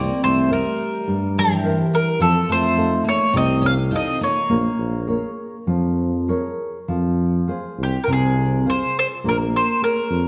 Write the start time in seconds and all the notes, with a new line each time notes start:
Already playing: C2 A#3 C4 D5
0.23 C2 A3 C5
0.50 G3 A#4 C5 E5
1.08 G2 G3
1.38 E3 G4
1.64 A#4 C5 E5
1.94 G3 A#4
2.20 F2 F3 A4
2.48 F2 A3 C5
2.77 D#4 F4 A4
3.04 A#3
3.08 C#5
3.33 C2 C3 C4 D#5
3.62 C#4
3.66 F5
3.91 C4 D#4 F4 A4
3.96 D#5
4.21 A#3 C#5
4.49 A#1 A#3
4.78 A#1
5.07 G#4 A#4 C#5
5.67 F2 F3
6.28 G#4 A#4 C#5
6.88 F2 F3
7.48 F4 G#4 C5
7.78 C2
7.83 G4
8.04 C3 A#4
8.08 C2
8.13 G#4
8.66 F4 G#4 C5
8.99 C5
9.24 A#1 A#3
9.29 A#4
9.56 C5
9.82 G#4 A#4 C#5
10.10 F2